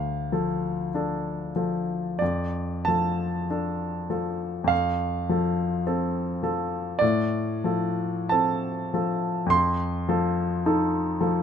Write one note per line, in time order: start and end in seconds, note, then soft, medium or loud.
0.00 2.13 D2 soft
0.00 2.19 F5 medium
0.32 0.89 F3 soft
0.32 0.90 A4 soft
0.94 1.52 D4 soft
0.94 1.52 A4 soft
1.56 2.17 F3 soft
1.56 2.17 A4 soft
2.19 4.62 F2 soft
2.19 2.86 D5 medium
2.85 3.46 F3 soft
2.85 3.46 A4 soft
2.85 4.70 A5 medium
3.50 4.07 D4 soft
3.50 4.07 A4 soft
4.10 4.66 F3 soft
4.10 4.67 A4 soft
4.64 6.94 F2 soft
4.64 7.00 F5 medium
5.29 5.83 F3 soft
5.29 5.83 A4 soft
5.87 6.40 C4 soft
5.87 6.40 A4 soft
6.43 6.97 F3 soft
6.43 6.98 A4 soft
6.99 9.47 A2 soft
6.99 8.31 D5 medium
7.64 8.28 F3 soft
7.64 8.28 A4 soft
8.29 8.90 C4 soft
8.29 8.90 A4 soft
8.29 9.50 A5 medium
8.94 9.47 F3 soft
8.94 9.48 A4 soft
9.46 11.43 F2 soft
9.46 11.43 C6 medium
10.09 10.61 F3 soft
10.09 10.62 A4 soft
10.66 11.18 D#4 soft
10.66 11.18 A4 soft
11.21 11.43 F3 soft
11.21 11.43 A4 soft